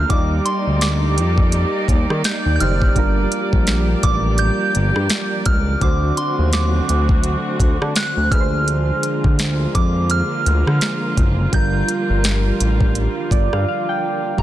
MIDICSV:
0, 0, Header, 1, 6, 480
1, 0, Start_track
1, 0, Key_signature, -2, "minor"
1, 0, Tempo, 714286
1, 69, Time_signature, 4, 2, 24, 8
1, 9694, End_track
2, 0, Start_track
2, 0, Title_t, "Synth bell"
2, 0, Program_c, 0, 98
2, 0, Note_on_c, 0, 89, 97
2, 66, Note_on_c, 0, 86, 89
2, 76, Note_off_c, 0, 89, 0
2, 160, Note_off_c, 0, 86, 0
2, 305, Note_on_c, 0, 84, 80
2, 548, Note_on_c, 0, 86, 93
2, 554, Note_off_c, 0, 84, 0
2, 1512, Note_on_c, 0, 91, 91
2, 1537, Note_off_c, 0, 86, 0
2, 1710, Note_off_c, 0, 91, 0
2, 1718, Note_on_c, 0, 91, 75
2, 1751, Note_on_c, 0, 89, 95
2, 1754, Note_off_c, 0, 91, 0
2, 2711, Note_on_c, 0, 86, 83
2, 2739, Note_off_c, 0, 89, 0
2, 2949, Note_on_c, 0, 91, 101
2, 2957, Note_off_c, 0, 86, 0
2, 3669, Note_on_c, 0, 89, 91
2, 3691, Note_off_c, 0, 91, 0
2, 3893, Note_off_c, 0, 89, 0
2, 3910, Note_on_c, 0, 86, 84
2, 4150, Note_on_c, 0, 84, 76
2, 4157, Note_off_c, 0, 86, 0
2, 4390, Note_on_c, 0, 86, 86
2, 4397, Note_off_c, 0, 84, 0
2, 5356, Note_on_c, 0, 90, 93
2, 5378, Note_off_c, 0, 86, 0
2, 5587, Note_on_c, 0, 89, 87
2, 5600, Note_off_c, 0, 90, 0
2, 6281, Note_off_c, 0, 89, 0
2, 6552, Note_on_c, 0, 86, 82
2, 6794, Note_on_c, 0, 89, 101
2, 6798, Note_off_c, 0, 86, 0
2, 7755, Note_on_c, 0, 91, 95
2, 7780, Note_off_c, 0, 89, 0
2, 9165, Note_off_c, 0, 91, 0
2, 9670, Note_on_c, 0, 82, 79
2, 9694, Note_off_c, 0, 82, 0
2, 9694, End_track
3, 0, Start_track
3, 0, Title_t, "Synth keys"
3, 0, Program_c, 1, 88
3, 0, Control_c, 1, 64, 127
3, 61, Note_on_c, 1, 55, 66
3, 69, Note_on_c, 1, 63, 61
3, 76, Note_on_c, 1, 65, 48
3, 78, Control_c, 1, 64, 0
3, 84, Note_on_c, 1, 74, 70
3, 120, Note_on_c, 1, 67, 58
3, 123, Note_off_c, 1, 65, 0
3, 192, Control_c, 1, 64, 127
3, 1718, Note_off_c, 1, 55, 0
3, 1722, Note_off_c, 1, 63, 0
3, 1730, Note_off_c, 1, 74, 0
3, 1747, Note_on_c, 1, 51, 54
3, 1748, Note_off_c, 1, 67, 0
3, 1753, Note_on_c, 1, 63, 48
3, 1756, Note_on_c, 1, 67, 48
3, 1762, Note_on_c, 1, 72, 58
3, 1981, Note_on_c, 1, 55, 69
3, 1988, Note_off_c, 1, 51, 0
3, 1989, Note_on_c, 1, 62, 59
3, 1991, Note_off_c, 1, 63, 0
3, 1993, Note_off_c, 1, 67, 0
3, 1995, Note_off_c, 1, 72, 0
3, 1998, Control_c, 1, 64, 0
3, 1998, Note_on_c, 1, 65, 59
3, 2006, Note_on_c, 1, 70, 69
3, 2102, Control_c, 1, 64, 127
3, 3878, Note_off_c, 1, 55, 0
3, 3882, Note_off_c, 1, 62, 0
3, 3887, Note_off_c, 1, 65, 0
3, 3891, Note_off_c, 1, 70, 0
3, 3900, Note_on_c, 1, 50, 64
3, 3909, Note_on_c, 1, 62, 57
3, 3916, Control_c, 1, 64, 0
3, 3918, Note_on_c, 1, 66, 62
3, 3924, Note_on_c, 1, 72, 68
3, 4019, Control_c, 1, 64, 127
3, 5558, Note_off_c, 1, 50, 0
3, 5562, Note_off_c, 1, 62, 0
3, 5567, Note_off_c, 1, 66, 0
3, 5570, Note_off_c, 1, 72, 0
3, 5581, Note_on_c, 1, 50, 70
3, 5588, Note_on_c, 1, 62, 59
3, 5596, Note_on_c, 1, 68, 60
3, 5598, Control_c, 1, 64, 0
3, 5605, Note_on_c, 1, 71, 59
3, 5648, Note_off_c, 1, 71, 0
3, 5648, Note_on_c, 1, 72, 77
3, 5715, Control_c, 1, 64, 127
3, 7478, Note_off_c, 1, 50, 0
3, 7482, Note_off_c, 1, 62, 0
3, 7485, Note_off_c, 1, 68, 0
3, 7512, Note_off_c, 1, 72, 0
3, 7744, Note_on_c, 1, 55, 65
3, 7751, Note_on_c, 1, 62, 59
3, 7758, Control_c, 1, 64, 0
3, 7758, Note_on_c, 1, 65, 61
3, 7766, Note_on_c, 1, 70, 69
3, 7865, Control_c, 1, 64, 127
3, 8951, Note_on_c, 1, 74, 72
3, 9080, Note_off_c, 1, 74, 0
3, 9092, Note_on_c, 1, 77, 67
3, 9184, Note_off_c, 1, 77, 0
3, 9196, Note_on_c, 1, 77, 70
3, 9323, Note_off_c, 1, 77, 0
3, 9334, Note_on_c, 1, 79, 74
3, 9640, Note_off_c, 1, 55, 0
3, 9643, Note_off_c, 1, 62, 0
3, 9647, Note_off_c, 1, 65, 0
3, 9648, Note_off_c, 1, 79, 0
3, 9651, Note_off_c, 1, 70, 0
3, 9660, Note_on_c, 1, 55, 58
3, 9669, Note_on_c, 1, 65, 57
3, 9677, Control_c, 1, 64, 0
3, 9694, Note_off_c, 1, 55, 0
3, 9694, Note_off_c, 1, 65, 0
3, 9694, End_track
4, 0, Start_track
4, 0, Title_t, "String section"
4, 0, Program_c, 2, 48
4, 0, Note_on_c, 2, 58, 76
4, 70, Note_on_c, 2, 63, 81
4, 70, Note_on_c, 2, 67, 87
4, 70, Note_on_c, 2, 74, 75
4, 71, Note_on_c, 2, 55, 73
4, 1971, Note_off_c, 2, 63, 0
4, 1971, Note_off_c, 2, 67, 0
4, 1989, Note_on_c, 2, 53, 78
4, 1991, Note_on_c, 2, 67, 91
4, 3883, Note_off_c, 2, 55, 0
4, 3883, Note_off_c, 2, 58, 0
4, 3883, Note_off_c, 2, 74, 0
4, 3890, Note_off_c, 2, 53, 0
4, 3891, Note_off_c, 2, 67, 0
4, 3910, Note_on_c, 2, 50, 79
4, 3910, Note_on_c, 2, 54, 79
4, 3912, Note_on_c, 2, 57, 76
4, 3912, Note_on_c, 2, 60, 77
4, 3912, Note_on_c, 2, 66, 89
4, 5573, Note_off_c, 2, 54, 0
4, 5574, Note_off_c, 2, 57, 0
4, 5574, Note_off_c, 2, 60, 0
4, 5574, Note_off_c, 2, 66, 0
4, 5588, Note_on_c, 2, 56, 70
4, 5588, Note_on_c, 2, 58, 72
4, 5588, Note_on_c, 2, 65, 86
4, 5589, Note_on_c, 2, 53, 73
4, 7727, Note_off_c, 2, 56, 0
4, 7754, Note_on_c, 2, 55, 76
4, 9642, Note_off_c, 2, 53, 0
4, 9642, Note_off_c, 2, 58, 0
4, 9642, Note_off_c, 2, 65, 0
4, 9643, Note_off_c, 2, 50, 0
4, 9652, Note_off_c, 2, 55, 0
4, 9666, Note_on_c, 2, 58, 72
4, 9667, Note_on_c, 2, 53, 76
4, 9668, Note_on_c, 2, 65, 85
4, 9669, Note_on_c, 2, 55, 73
4, 9694, Note_off_c, 2, 53, 0
4, 9694, Note_off_c, 2, 55, 0
4, 9694, Note_off_c, 2, 58, 0
4, 9694, Note_off_c, 2, 65, 0
4, 9694, End_track
5, 0, Start_track
5, 0, Title_t, "Analog synth bass"
5, 0, Program_c, 3, 38
5, 67, Note_on_c, 3, 39, 108
5, 268, Note_off_c, 3, 39, 0
5, 449, Note_on_c, 3, 38, 87
5, 791, Note_on_c, 3, 41, 94
5, 801, Note_off_c, 3, 38, 0
5, 1107, Note_off_c, 3, 41, 0
5, 1265, Note_on_c, 3, 39, 93
5, 1383, Note_off_c, 3, 39, 0
5, 1410, Note_on_c, 3, 51, 96
5, 1493, Note_off_c, 3, 51, 0
5, 1651, Note_on_c, 3, 39, 90
5, 1734, Note_off_c, 3, 39, 0
5, 1752, Note_on_c, 3, 30, 97
5, 1951, Note_off_c, 3, 30, 0
5, 1989, Note_on_c, 3, 31, 103
5, 2190, Note_off_c, 3, 31, 0
5, 2372, Note_on_c, 3, 34, 92
5, 2655, Note_off_c, 3, 34, 0
5, 2713, Note_on_c, 3, 33, 91
5, 3028, Note_off_c, 3, 33, 0
5, 3193, Note_on_c, 3, 31, 95
5, 3308, Note_off_c, 3, 31, 0
5, 3331, Note_on_c, 3, 43, 93
5, 3414, Note_off_c, 3, 43, 0
5, 3671, Note_on_c, 3, 37, 86
5, 3871, Note_off_c, 3, 37, 0
5, 3909, Note_on_c, 3, 38, 103
5, 4110, Note_off_c, 3, 38, 0
5, 4291, Note_on_c, 3, 39, 88
5, 4574, Note_off_c, 3, 39, 0
5, 4632, Note_on_c, 3, 38, 88
5, 4947, Note_off_c, 3, 38, 0
5, 5107, Note_on_c, 3, 38, 90
5, 5224, Note_off_c, 3, 38, 0
5, 5250, Note_on_c, 3, 50, 95
5, 5333, Note_off_c, 3, 50, 0
5, 5489, Note_on_c, 3, 38, 87
5, 5573, Note_off_c, 3, 38, 0
5, 5591, Note_on_c, 3, 38, 97
5, 5991, Note_off_c, 3, 38, 0
5, 6212, Note_on_c, 3, 38, 93
5, 6495, Note_off_c, 3, 38, 0
5, 6553, Note_on_c, 3, 41, 90
5, 6868, Note_off_c, 3, 41, 0
5, 7031, Note_on_c, 3, 38, 97
5, 7146, Note_off_c, 3, 38, 0
5, 7168, Note_on_c, 3, 50, 102
5, 7252, Note_off_c, 3, 50, 0
5, 7510, Note_on_c, 3, 30, 101
5, 7710, Note_off_c, 3, 30, 0
5, 7748, Note_on_c, 3, 31, 104
5, 7949, Note_off_c, 3, 31, 0
5, 8128, Note_on_c, 3, 31, 83
5, 8413, Note_off_c, 3, 31, 0
5, 8470, Note_on_c, 3, 33, 98
5, 8786, Note_off_c, 3, 33, 0
5, 8946, Note_on_c, 3, 31, 97
5, 9064, Note_off_c, 3, 31, 0
5, 9090, Note_on_c, 3, 43, 99
5, 9174, Note_off_c, 3, 43, 0
5, 9669, Note_on_c, 3, 31, 97
5, 9694, Note_off_c, 3, 31, 0
5, 9694, End_track
6, 0, Start_track
6, 0, Title_t, "Drums"
6, 67, Note_on_c, 9, 36, 123
6, 67, Note_on_c, 9, 42, 67
6, 134, Note_off_c, 9, 36, 0
6, 134, Note_off_c, 9, 42, 0
6, 306, Note_on_c, 9, 42, 66
6, 374, Note_off_c, 9, 42, 0
6, 546, Note_on_c, 9, 42, 75
6, 551, Note_on_c, 9, 38, 121
6, 613, Note_off_c, 9, 42, 0
6, 618, Note_off_c, 9, 38, 0
6, 791, Note_on_c, 9, 42, 71
6, 858, Note_off_c, 9, 42, 0
6, 925, Note_on_c, 9, 36, 92
6, 992, Note_off_c, 9, 36, 0
6, 1023, Note_on_c, 9, 42, 62
6, 1090, Note_off_c, 9, 42, 0
6, 1265, Note_on_c, 9, 36, 86
6, 1270, Note_on_c, 9, 42, 63
6, 1332, Note_off_c, 9, 36, 0
6, 1337, Note_off_c, 9, 42, 0
6, 1413, Note_on_c, 9, 37, 96
6, 1480, Note_off_c, 9, 37, 0
6, 1507, Note_on_c, 9, 42, 66
6, 1512, Note_on_c, 9, 38, 123
6, 1575, Note_off_c, 9, 42, 0
6, 1579, Note_off_c, 9, 38, 0
6, 1750, Note_on_c, 9, 42, 68
6, 1817, Note_off_c, 9, 42, 0
6, 1893, Note_on_c, 9, 36, 95
6, 1960, Note_off_c, 9, 36, 0
6, 1987, Note_on_c, 9, 36, 115
6, 1988, Note_on_c, 9, 42, 65
6, 2054, Note_off_c, 9, 36, 0
6, 2056, Note_off_c, 9, 42, 0
6, 2229, Note_on_c, 9, 42, 65
6, 2296, Note_off_c, 9, 42, 0
6, 2371, Note_on_c, 9, 36, 94
6, 2438, Note_off_c, 9, 36, 0
6, 2465, Note_on_c, 9, 42, 76
6, 2470, Note_on_c, 9, 38, 115
6, 2532, Note_off_c, 9, 42, 0
6, 2537, Note_off_c, 9, 38, 0
6, 2709, Note_on_c, 9, 42, 76
6, 2711, Note_on_c, 9, 36, 98
6, 2777, Note_off_c, 9, 42, 0
6, 2778, Note_off_c, 9, 36, 0
6, 2943, Note_on_c, 9, 42, 61
6, 3010, Note_off_c, 9, 42, 0
6, 3191, Note_on_c, 9, 42, 63
6, 3258, Note_off_c, 9, 42, 0
6, 3332, Note_on_c, 9, 37, 95
6, 3399, Note_off_c, 9, 37, 0
6, 3424, Note_on_c, 9, 42, 63
6, 3429, Note_on_c, 9, 38, 115
6, 3491, Note_off_c, 9, 42, 0
6, 3496, Note_off_c, 9, 38, 0
6, 3666, Note_on_c, 9, 42, 65
6, 3669, Note_on_c, 9, 36, 99
6, 3733, Note_off_c, 9, 42, 0
6, 3736, Note_off_c, 9, 36, 0
6, 3907, Note_on_c, 9, 42, 67
6, 3908, Note_on_c, 9, 36, 123
6, 3974, Note_off_c, 9, 42, 0
6, 3975, Note_off_c, 9, 36, 0
6, 4148, Note_on_c, 9, 42, 64
6, 4215, Note_off_c, 9, 42, 0
6, 4386, Note_on_c, 9, 42, 72
6, 4391, Note_on_c, 9, 38, 114
6, 4453, Note_off_c, 9, 42, 0
6, 4458, Note_off_c, 9, 38, 0
6, 4631, Note_on_c, 9, 42, 74
6, 4698, Note_off_c, 9, 42, 0
6, 4765, Note_on_c, 9, 36, 97
6, 4832, Note_off_c, 9, 36, 0
6, 4862, Note_on_c, 9, 42, 64
6, 4929, Note_off_c, 9, 42, 0
6, 5105, Note_on_c, 9, 36, 93
6, 5109, Note_on_c, 9, 42, 63
6, 5172, Note_off_c, 9, 36, 0
6, 5176, Note_off_c, 9, 42, 0
6, 5254, Note_on_c, 9, 37, 98
6, 5321, Note_off_c, 9, 37, 0
6, 5346, Note_on_c, 9, 42, 63
6, 5351, Note_on_c, 9, 38, 120
6, 5413, Note_off_c, 9, 42, 0
6, 5418, Note_off_c, 9, 38, 0
6, 5589, Note_on_c, 9, 36, 107
6, 5591, Note_on_c, 9, 42, 69
6, 5656, Note_off_c, 9, 36, 0
6, 5658, Note_off_c, 9, 42, 0
6, 5831, Note_on_c, 9, 42, 67
6, 5898, Note_off_c, 9, 42, 0
6, 6069, Note_on_c, 9, 42, 67
6, 6136, Note_off_c, 9, 42, 0
6, 6211, Note_on_c, 9, 36, 97
6, 6278, Note_off_c, 9, 36, 0
6, 6309, Note_on_c, 9, 42, 70
6, 6314, Note_on_c, 9, 38, 121
6, 6376, Note_off_c, 9, 42, 0
6, 6381, Note_off_c, 9, 38, 0
6, 6551, Note_on_c, 9, 36, 91
6, 6552, Note_on_c, 9, 42, 75
6, 6618, Note_off_c, 9, 36, 0
6, 6620, Note_off_c, 9, 42, 0
6, 6785, Note_on_c, 9, 42, 61
6, 6852, Note_off_c, 9, 42, 0
6, 7032, Note_on_c, 9, 42, 67
6, 7099, Note_off_c, 9, 42, 0
6, 7173, Note_on_c, 9, 37, 98
6, 7240, Note_off_c, 9, 37, 0
6, 7266, Note_on_c, 9, 42, 63
6, 7271, Note_on_c, 9, 38, 120
6, 7333, Note_off_c, 9, 42, 0
6, 7338, Note_off_c, 9, 38, 0
6, 7509, Note_on_c, 9, 36, 99
6, 7509, Note_on_c, 9, 42, 64
6, 7576, Note_off_c, 9, 36, 0
6, 7577, Note_off_c, 9, 42, 0
6, 7747, Note_on_c, 9, 36, 118
6, 7748, Note_on_c, 9, 42, 66
6, 7814, Note_off_c, 9, 36, 0
6, 7815, Note_off_c, 9, 42, 0
6, 7987, Note_on_c, 9, 42, 68
6, 8054, Note_off_c, 9, 42, 0
6, 8226, Note_on_c, 9, 42, 70
6, 8230, Note_on_c, 9, 38, 119
6, 8293, Note_off_c, 9, 42, 0
6, 8297, Note_off_c, 9, 38, 0
6, 8470, Note_on_c, 9, 42, 75
6, 8538, Note_off_c, 9, 42, 0
6, 8605, Note_on_c, 9, 36, 92
6, 8672, Note_off_c, 9, 36, 0
6, 8704, Note_on_c, 9, 42, 63
6, 8771, Note_off_c, 9, 42, 0
6, 8945, Note_on_c, 9, 36, 89
6, 8950, Note_on_c, 9, 42, 63
6, 9012, Note_off_c, 9, 36, 0
6, 9018, Note_off_c, 9, 42, 0
6, 9092, Note_on_c, 9, 37, 92
6, 9159, Note_off_c, 9, 37, 0
6, 9666, Note_on_c, 9, 36, 107
6, 9694, Note_off_c, 9, 36, 0
6, 9694, End_track
0, 0, End_of_file